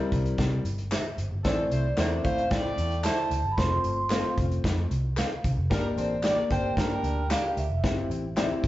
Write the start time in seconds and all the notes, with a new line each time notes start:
Already playing: G3 C4 E4 A#4
0.12 C2, kick, closed hi-hat, tambourine
0.25 closed hi-hat
0.38 C3, kick, snare, closed hi-hat, tambourine
0.65 G1, closed hi-hat, tambourine
0.78 closed hi-hat
0.91 G4 C5 E5, snare, clap, closed hi-hat, tambourine
1.18 G1, closed hi-hat, tambourine
1.31 G1
1.44 A1 E3 A3 C4 E4 A4 C5 D5, kick, snare, closed hi-hat, tambourine
1.70 C2 A3 E4 C5, closed hi-hat, tambourine
1.97 E2 A3 C4 D4 E4 A4 A#4 C5 D5 E5, snare, clap, closed hi-hat, tambourine
2.24 A2 A3 E4 C5 F5, kick, closed hi-hat, tambourine
2.38 closed hi-hat
2.51 A2 A3 E4 D5 G5, kick, snare, closed hi-hat
2.78 E2, closed hi-hat, tambourine
2.91 closed hi-hat
3.04 A3 E4 A4 C5 E5 A5, snare, clap, closed hi-hat, tambourine
3.31 D2, closed hi-hat, tambourine
3.44 G1
3.52 B5
3.57 F1 A3 C4 F4 C5 C6, kick, snare, closed hi-hat, tambourine
3.84 G1, closed hi-hat, tambourine
4.10 A3 C4 F4 A4 C5 F5, snare, clap, closed hi-hat, tambourine
4.38 F1, kick, closed hi-hat, tambourine
4.51 closed hi-hat
4.64 F2, kick, snare, closed hi-hat, tambourine
4.90 C2, closed hi-hat, tambourine
5.17 A4 C5 F5, snare, clap, closed hi-hat, tambourine
5.44 C2, kick, closed hi-hat, tambourine
5.57 F1
5.70 G1 G3 A#3 D4 G4 A#4 D5, kick, snare, closed hi-hat, tambourine
5.96 A1 C4 A4 C5 D5, closed hi-hat, tambourine
6.23 A#3 D4 G4 A#4 D5, snare, clap, closed hi-hat, tambourine
6.50 G1 C4 A4 C5 G5, kick, closed hi-hat, tambourine
6.77 G2 G3 D4 A#4, kick, snare, closed hi-hat, tambourine
7.03 D2, closed hi-hat, tambourine
7.30 D3 A#3 G4 A#4 D5 F5, snare, clap, closed hi-hat, tambourine
7.57 D2 E5, closed hi-hat, tambourine
7.70 F1
7.84 G1 C4 E4 G4 E5, kick, snare, closed hi-hat, tambourine
8.10 A1, closed hi-hat, tambourine
8.36 C4 E4 G4 C5 D5 E5, snare, clap, closed hi-hat, tambourine
8.44 E5
8.64 G1, kick, closed hi-hat, tambourine